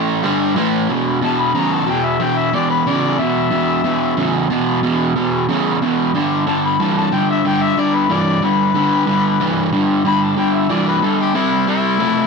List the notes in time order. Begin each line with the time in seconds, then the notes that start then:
Already playing: A2 E3 A3 G5
0.23 G2 D3 G3
0.55 A2 E3 A3
0.89 E2 B2
1.21 E2 B2 A5
1.41 B5
1.55 E2 C#3 A#5
1.74 A5
1.86 E2 B2 G5
2.05 E5
2.20 E2 B2 G5
2.37 E5
2.53 E2 B2 D5
2.70 B4
2.86 E2 C#3 D5
3.18 E2 B2 E5
3.51 E2 B2
3.84 E2 B2
4.17 E2 C#3
4.50 E2 B2
4.83 E2 B2
5.16 E2 B2
5.49 E2 C#3
5.82 E2 B2
6.14 G2 D3
6.47 G2 D3 A5
6.65 B5
6.80 G2 E3 A5
6.98 A5
7.12 G2 D3 G5
7.31 E5
7.44 G2 D3 G5
7.62 E5
7.77 G2 D3 D5
7.95 B4
8.10 G2 E3 D5
8.43 G2 D3 B4
8.75 G2 D3
9.07 G2 D3
9.40 G2 E3
9.73 G2 D3
10.05 G2 D3 B5
10.23 A5
10.37 G2 D3 G5
10.54 E5
10.70 G2 E3 D5
10.88 B4
11.03 G2 D3 A4
11.20 G4
11.35 C3 G3 E4
11.68 C3 G3 E4
12.00 C3 A3